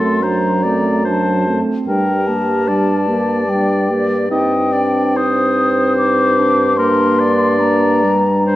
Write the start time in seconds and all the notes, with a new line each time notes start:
Already playing: F#2 A3 C4 A4 C6
0.22 F#3 D4 C5 A#5
0.63 A3 C4 D5
1.05 F#3 D4 C5 A5
1.47 A3 C4
1.87 G2 G3 D4 A#4 G5
2.27 A#3 G4 A5
2.68 G3 D4 D5
3.08 A#3 G4
3.42 A5
3.48 G3 D4 G5
3.89 A#3 G4
4.30 G2 C4 D#4 D#5 G5
4.73 D4 D5
5.16 D#4 C5 D#6
5.98 D#4 D6
6.39 D4
6.77 A#3 A#4 C6
7.19 D5
7.60 A#3 A#5
8.03 G3
8.46 D4 C5